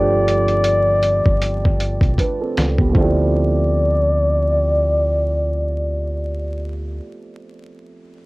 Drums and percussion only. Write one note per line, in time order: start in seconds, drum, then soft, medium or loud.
0.28 closed hi-hat medium
0.48 closed hi-hat soft
0.64 closed hi-hat medium
1.03 closed hi-hat medium
1.26 kick medium
1.42 closed hi-hat medium
1.65 kick medium
1.80 closed hi-hat medium
2.01 kick medium
2.01 closed hi-hat soft
2.18 kick soft
2.18 closed hi-hat medium
2.57 snare medium
2.57 closed hi-hat medium
2.78 kick medium
2.95 kick medium